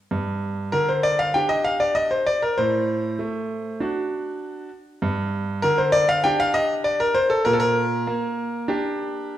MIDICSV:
0, 0, Header, 1, 2, 480
1, 0, Start_track
1, 0, Key_signature, -2, "minor"
1, 0, Tempo, 614754
1, 80, Time_signature, 4, 2, 24, 8
1, 4878, Tempo, 606061
1, 7357, End_track
2, 0, Start_track
2, 0, Title_t, "Grand piano"
2, 0, Program_c, 0, 0
2, 87, Note_on_c, 0, 43, 70
2, 559, Note_off_c, 0, 43, 0
2, 565, Note_on_c, 0, 70, 99
2, 571, Note_on_c, 0, 50, 56
2, 689, Note_off_c, 0, 70, 0
2, 692, Note_on_c, 0, 72, 88
2, 807, Note_on_c, 0, 74, 106
2, 812, Note_off_c, 0, 72, 0
2, 929, Note_off_c, 0, 74, 0
2, 929, Note_on_c, 0, 77, 102
2, 1047, Note_on_c, 0, 79, 99
2, 1050, Note_off_c, 0, 77, 0
2, 1057, Note_on_c, 0, 62, 54
2, 1061, Note_on_c, 0, 67, 58
2, 1075, Note_off_c, 0, 50, 0
2, 1164, Note_on_c, 0, 75, 95
2, 1168, Note_off_c, 0, 79, 0
2, 1285, Note_on_c, 0, 77, 94
2, 1287, Note_off_c, 0, 75, 0
2, 1405, Note_on_c, 0, 74, 91
2, 1408, Note_off_c, 0, 77, 0
2, 1522, Note_on_c, 0, 75, 101
2, 1528, Note_off_c, 0, 74, 0
2, 1646, Note_on_c, 0, 72, 86
2, 1647, Note_off_c, 0, 75, 0
2, 1745, Note_off_c, 0, 62, 0
2, 1748, Note_off_c, 0, 67, 0
2, 1768, Note_off_c, 0, 72, 0
2, 1769, Note_on_c, 0, 74, 100
2, 1889, Note_off_c, 0, 74, 0
2, 1893, Note_on_c, 0, 70, 88
2, 2011, Note_off_c, 0, 70, 0
2, 2012, Note_on_c, 0, 72, 93
2, 2019, Note_on_c, 0, 45, 73
2, 2475, Note_off_c, 0, 45, 0
2, 2490, Note_on_c, 0, 57, 62
2, 2970, Note_on_c, 0, 62, 52
2, 2974, Note_on_c, 0, 66, 62
2, 2986, Note_off_c, 0, 57, 0
2, 3012, Note_off_c, 0, 72, 0
2, 3655, Note_off_c, 0, 62, 0
2, 3657, Note_off_c, 0, 66, 0
2, 3920, Note_on_c, 0, 43, 78
2, 4384, Note_off_c, 0, 43, 0
2, 4391, Note_on_c, 0, 70, 112
2, 4403, Note_on_c, 0, 50, 63
2, 4513, Note_on_c, 0, 72, 91
2, 4514, Note_off_c, 0, 70, 0
2, 4624, Note_on_c, 0, 74, 115
2, 4635, Note_off_c, 0, 72, 0
2, 4751, Note_off_c, 0, 74, 0
2, 4753, Note_on_c, 0, 77, 111
2, 4870, Note_on_c, 0, 79, 112
2, 4876, Note_off_c, 0, 77, 0
2, 4878, Note_on_c, 0, 62, 63
2, 4881, Note_on_c, 0, 67, 68
2, 4906, Note_off_c, 0, 50, 0
2, 4995, Note_off_c, 0, 79, 0
2, 4997, Note_on_c, 0, 77, 112
2, 5110, Note_on_c, 0, 75, 112
2, 5119, Note_off_c, 0, 77, 0
2, 5257, Note_off_c, 0, 75, 0
2, 5350, Note_on_c, 0, 74, 95
2, 5474, Note_on_c, 0, 70, 97
2, 5475, Note_off_c, 0, 74, 0
2, 5570, Note_off_c, 0, 62, 0
2, 5571, Note_off_c, 0, 67, 0
2, 5589, Note_on_c, 0, 72, 112
2, 5597, Note_off_c, 0, 70, 0
2, 5709, Note_on_c, 0, 69, 95
2, 5714, Note_off_c, 0, 72, 0
2, 5829, Note_on_c, 0, 70, 107
2, 5834, Note_off_c, 0, 69, 0
2, 5839, Note_on_c, 0, 46, 81
2, 5888, Note_off_c, 0, 70, 0
2, 5896, Note_on_c, 0, 69, 97
2, 5948, Note_on_c, 0, 70, 113
2, 5949, Note_off_c, 0, 69, 0
2, 6305, Note_off_c, 0, 46, 0
2, 6324, Note_on_c, 0, 58, 65
2, 6806, Note_on_c, 0, 62, 68
2, 6811, Note_on_c, 0, 67, 70
2, 6826, Note_off_c, 0, 58, 0
2, 7357, Note_off_c, 0, 62, 0
2, 7357, Note_off_c, 0, 67, 0
2, 7357, Note_off_c, 0, 70, 0
2, 7357, End_track
0, 0, End_of_file